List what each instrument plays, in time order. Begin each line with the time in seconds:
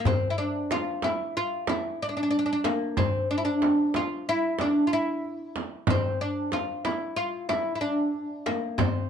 0.05 oud C4, darbuka dum, frame drum
0.30 oud E4
0.38 oud D4
0.71 oud F4, darbuka tek, frame drum
1.02 oud E4, darbuka tek, frame drum
1.35 oud F4, darbuka ka
1.67 oud E4, darbuka tek, frame drum
2.01 oud D4, darbuka ka
2.09 oud D4
2.17 oud D4
2.23 oud D4
2.31 oud D4, darbuka ka
2.39 oud D4
2.46 oud D4
2.53 oud D4
2.64 oud A#3, darbuka tek, frame drum
2.97 oud C4, frame drum, darbuka dum
3.31 oud D4
3.38 oud E4
3.45 oud D4
3.62 darbuka tek, frame drum
3.94 oud F4, darbuka tek, frame drum
4.28 oud E4, darbuka ka
4.59 oud D4, darbuka tek, frame drum
4.87 oud F4
4.92 oud E4, darbuka ka
5.25 darbuka ka
5.56 darbuka tek, frame drum
5.87 oud C4, frame drum, darbuka dum
6.21 oud D4
6.52 oud F4, darbuka tek, frame drum
6.85 oud E4, darbuka tek, frame drum
7.16 oud F4, darbuka ka
7.49 oud E4, darbuka tek, frame drum
7.75 oud E4
7.81 oud D4, darbuka ka
8.14 darbuka ka
8.46 oud A#3, darbuka tek, frame drum
8.78 oud C4, darbuka dum, frame drum